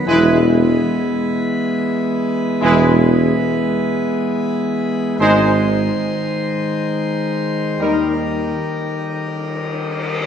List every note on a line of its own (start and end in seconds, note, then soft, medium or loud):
0.06 0.77 E1 loud
0.06 5.20 E3 medium
0.06 5.18 G#3 medium
0.06 0.38 G#3 medium
0.06 5.15 B3 medium
0.06 0.39 E4 loud
0.06 5.15 B4 medium
0.06 0.38 B4 loud
2.61 3.33 E1 loud
2.61 2.93 G#3 loud
2.61 2.94 E4 loud
2.61 2.94 B4 medium
5.19 5.91 G#1 loud
5.19 10.26 D#3 medium
5.19 5.51 G#3 loud
5.19 7.76 G#3 medium
5.19 10.26 D#4 medium
5.19 5.52 D#4 medium
5.19 7.80 C5 medium
5.19 5.52 C5 medium
7.79 8.54 D#2 medium
7.79 8.13 G3 medium
7.79 10.26 G3 medium
7.79 8.14 D#4 medium
7.79 8.13 A#4 medium
7.79 10.26 A#4 medium